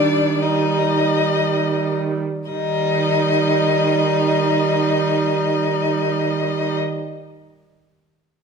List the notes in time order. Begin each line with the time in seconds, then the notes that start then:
Already playing: D#3 G3 D4 D5
0.42 G3 D#4 D#5
2.50 D#3 G3 D#4 D#5